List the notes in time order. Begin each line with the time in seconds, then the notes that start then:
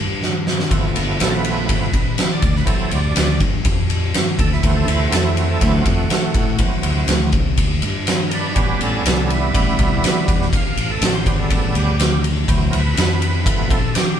Already playing: G2
0.23 snare
0.47 snare
0.60 snare
0.71 G1 F3 A3 B3, kick, ride
0.96 G1, ride
1.20 A#1 A4, snare, ride
1.30 A#4
1.35 B4
1.45 ride
1.68 G1 F3 A3 B3, kick, ride
1.93 A#1, kick, ride
2.18 muted fingered electric bass stroke, snare, ride
2.32 D5
2.42 D2, kick, ride
2.56 B4, snare
2.65 E3 F#3 C4 A4, muted fingered electric bass stroke, kick, ride
2.88 C#5, ride
2.92 D2 D5
3.16 D2, snare, ride
3.40 G2, kick, ride
3.65 F2, kick, ride
3.90 ride
4.14 G2, snare, ride
4.39 D2 A4, kick, ride
4.52 E4, snare
4.62 D2 E3 A3 C4, kick, ride
4.67 F#4
4.76 A4
4.88 D2 E4, ride
5.03 F#4
5.12 F2 A4, snare, ride
5.24 E4
5.37 F#4, ride
5.51 A4
5.59 D2 E3 F#3 C4 E4, kick, ride
5.73 F#4
5.82 F2 F4 F#4, kick, ride
6.10 muted fingered electric bass stroke, snare, ride
6.34 A2, kick, ride
6.58 E3 F#3 C4, muted fingered electric bass stroke, kick, ride
6.83 D2, ride
7.08 D2, snare, ride
7.32 C2, kick, ride
7.57 D2, kick, ride
7.82 G2, ride
8.07 snare, ride
8.29 A#4, ride
8.34 D4 B4
8.55 A1 G3 B3 C#4 G4 B4, kick, ride
8.81 A1 C#4 A4, ride
9.05 C2 C#4 A4, snare, ride
9.30 E4, ride
9.55 A1, kick, ride
9.79 C2, kick, ride
10.04 muted fingered electric bass stroke, snare, ride
10.28 E2, kick, ride
10.42 snare
10.53 F5, muted fingered electric bass stroke, kick, ride
10.67 F5
10.77 A1, ride
10.90 A4
11.02 A1, snare, ride
11.15 C5
11.26 G1 C#3 G3 B3, kick, ride
11.39 A4
11.50 A1, kick, ride
11.75 D2 G4, ride
12.00 snare, ride
12.24 ride
12.48 D2 E3 F#3 C4, kick, ride
12.71 D2 A#4, ride
12.75 B4
12.97 F2, snare, ride
13.22 ride
13.45 G1 F3 A3 B3, kick, ride
13.70 A#1 A4, kick, ride
13.95 G4, muted fingered electric bass stroke, snare, ride